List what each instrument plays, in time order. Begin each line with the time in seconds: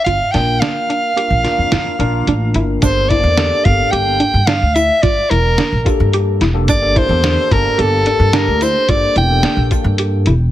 0.04 upright bass G1, synth arpeggio sound F4, soprano saxophone F5, closed hi-hat
0.31 upright bass A#1, tine electric piano A#3 D4 F4 A#4, synth arpeggio sound D4, soprano saxophone G5, snare, closed hi-hat
0.60 synth arpeggio sound D4, soprano saxophone F5, snare, closed hi-hat
0.90 synth arpeggio sound D4, closed hi-hat
1.16 tine electric piano A#3 D4 F4 A#4, synth arpeggio sound G4, closed hi-hat
1.30 upright bass A#1
1.44 tine electric piano A#3 D4 F4 A#4, synth arpeggio sound F4, snare, closed hi-hat
1.58 upright bass F2
1.72 upright bass F2, synth arpeggio sound E4, snare, closed hi-hat
1.99 upright bass A#1, tine electric piano A#3 D4 F4 A#4, synth arpeggio sound D4, closed hi-hat
2.27 upright bass A1, synth arpeggio sound D4, closed hi-hat
2.54 upright bass G1, synth arpeggio sound E4, closed hi-hat
2.82 upright bass G1, tine electric piano A#3 D4 G4 A4, synth arpeggio sound D4, soprano saxophone C5, kick, closed hi-hat, shaker
3.09 synth arpeggio sound E4, soprano saxophone D5, kick, closed hi-hat
3.23 upright bass E2
3.37 tine electric piano A#3 D4 G4 A4, synth arpeggio sound D4, snare, closed hi-hat
3.64 upright bass G1, synth arpeggio sound F4, soprano saxophone F5, kick, closed hi-hat
3.91 upright bass G1, synth arpeggio sound G4, soprano saxophone G5, closed hi-hat
4.20 synth arpeggio sound D4, closed hi-hat
4.34 upright bass G2
4.47 synth arpeggio sound D4, soprano saxophone F5, snare, closed hi-hat
4.62 upright bass D2
4.74 synth arpeggio sound E4, soprano saxophone E5, closed hi-hat, shaker
5.02 upright bass G2, synth arpeggio sound F4, soprano saxophone D5, kick, closed hi-hat
5.30 upright bass E1, synth arpeggio sound E4, soprano saxophone A#4, closed hi-hat
5.58 synth arpeggio sound D4, snare, closed hi-hat
5.72 upright bass A#1
5.84 tine electric piano A#3 D4 G4 A4, synth arpeggio sound F4, kick, closed hi-hat, shaker
6.00 upright bass G2
6.13 synth arpeggio sound G4, closed hi-hat
6.41 upright bass E1, synth arpeggio sound E4, snare, closed hi-hat
6.54 tine electric piano A#3 D4 G4 A4
6.68 upright bass G1, synth arpeggio sound D4, soprano saxophone D5, kick, closed hi-hat, shaker
6.81 tine electric piano A#3 D4 G4 A4
6.96 synth arpeggio sound E4, soprano saxophone C5, kick, closed hi-hat
7.09 upright bass E2, tine electric piano A#3 D4 G4 A4
7.23 synth arpeggio sound D4, snare, closed hi-hat
7.51 upright bass G1, tine electric piano A#3 D4 G4 A4, synth arpeggio sound F4, soprano saxophone A#4, kick, closed hi-hat
7.78 upright bass G1, tine electric piano A#3 D4 G4 A4, synth arpeggio sound G4, soprano saxophone A4, closed hi-hat
8.06 synth arpeggio sound D4, closed hi-hat
8.19 upright bass G2
8.33 tine electric piano A#3 D4 G4 A4, synth arpeggio sound D4, soprano saxophone A#4, snare, closed hi-hat
8.47 upright bass D2
8.61 synth arpeggio sound E4, soprano saxophone C5, closed hi-hat, shaker
8.88 upright bass G2, tine electric piano A#3 D4 G4 A4, synth arpeggio sound F4, soprano saxophone D5, kick, closed hi-hat
9.16 upright bass E1, synth arpeggio sound E4, soprano saxophone G5, closed hi-hat
9.29 tine electric piano A#3 D4 G4 A4
9.43 synth arpeggio sound D4, snare, closed hi-hat
9.57 upright bass A#1
9.71 synth arpeggio sound F4, kick, closed hi-hat, shaker
9.84 upright bass G2
9.98 synth arpeggio sound G4, closed hi-hat
10.26 upright bass E1, synth arpeggio sound E4, closed hi-hat